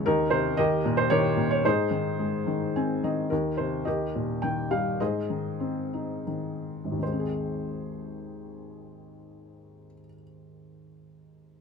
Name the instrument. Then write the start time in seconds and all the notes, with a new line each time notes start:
felt piano
0.06 D#2 D#4 A#4
0.30 C3 C5
0.57 D#2 G4 A#4 D#5
0.85 A#2
0.97 C5
1.10 D#3 G4 A#4 C#5
1.37 A#2
1.51 C#5
1.64 G#2 D#4 G#4 C5
1.91 D#3
2.19 G#3
2.47 D#3
2.76 C4 G#5
3.04 D#3 D#5
3.30 D#2 D#4 A#4
3.57 C3 C5
3.85 D#2 G4 A#4 D#5
4.15 A#2
4.42 D#3 G5
4.71 G3 F5
5.00 G#2 G#4 C5 D#5
5.30 D#3
5.60 C4
5.93 D#4
6.27 D#3
6.85 G#1
6.92 D#2
6.99 D#3 C5
7.06 G#3
7.13 C4
7.20 G#4